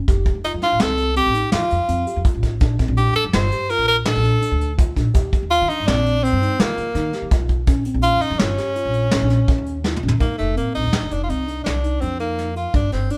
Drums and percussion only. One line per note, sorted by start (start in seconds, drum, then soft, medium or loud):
0.08 kick medium
0.08 closed hi-hat medium
0.26 kick medium
0.26 closed hi-hat medium
0.44 closed hi-hat medium
0.62 snare soft
0.62 closed hi-hat medium
0.80 snare loud
0.80 closed hi-hat medium
0.98 closed hi-hat medium
1.16 closed hi-hat medium
1.34 closed hi-hat medium
1.52 snare loud
1.52 closed hi-hat medium
1.70 closed hi-hat medium
1.89 closed hi-hat medium
2.07 closed hi-hat medium
2.25 kick medium
2.25 closed hi-hat medium
2.43 kick medium
2.43 closed hi-hat medium
2.60 kick loud
2.60 closed hi-hat medium
2.79 kick medium
2.79 closed hi-hat medium
2.97 closed hi-hat medium
3.15 snare soft
3.15 closed hi-hat medium
3.33 snare loud
3.33 closed hi-hat medium
3.52 closed hi-hat medium
3.70 closed hi-hat medium
3.88 closed hi-hat medium
4.05 snare loud
4.05 closed hi-hat medium
4.23 closed hi-hat medium
4.42 closed hi-hat medium
4.61 closed hi-hat medium
4.79 kick loud
4.79 closed hi-hat medium
4.96 kick medium
4.96 closed hi-hat medium
5.14 kick medium
5.14 closed hi-hat medium
5.33 kick medium
5.33 closed hi-hat medium
5.52 closed hi-hat medium
5.70 closed hi-hat medium
5.88 snare loud
5.88 closed hi-hat medium
6.06 closed hi-hat medium
6.25 closed hi-hat medium
6.43 closed hi-hat medium
6.60 snare loud
6.60 closed hi-hat medium
6.78 closed hi-hat medium
6.95 snare soft
6.95 closed hi-hat medium
7.13 snare soft
7.13 closed hi-hat medium
7.31 kick loud
7.31 closed hi-hat medium
7.49 kick medium
7.49 closed hi-hat medium
7.67 kick loud
7.67 closed hi-hat medium
7.85 closed hi-hat medium
8.02 closed hi-hat medium
8.21 closed hi-hat medium
8.39 snare loud
8.39 closed hi-hat medium
8.58 snare soft
8.58 closed hi-hat medium
8.76 closed hi-hat medium
8.94 closed hi-hat medium
9.11 snare loud
9.11 closed hi-hat medium
9.30 snare soft
9.30 closed hi-hat medium
9.48 kick medium
9.48 closed hi-hat medium
9.66 closed hi-hat medium
9.84 snare medium
9.96 mid tom medium
10.08 floor tom loud
10.20 kick medium
10.20 closed hi-hat medium
10.39 closed hi-hat medium
10.57 closed hi-hat medium
10.75 closed hi-hat medium
10.93 snare loud
10.93 closed hi-hat medium
11.11 closed hi-hat medium
11.30 closed hi-hat medium
11.48 closed hi-hat medium
11.66 snare medium
11.66 closed hi-hat medium
11.84 closed hi-hat medium
12.01 closed hi-hat medium
12.19 closed hi-hat soft
12.38 snare soft
12.38 closed hi-hat medium
12.56 closed hi-hat soft
12.74 kick medium
12.74 closed hi-hat medium
12.92 snare soft
12.92 closed hi-hat medium
13.10 closed hi-hat medium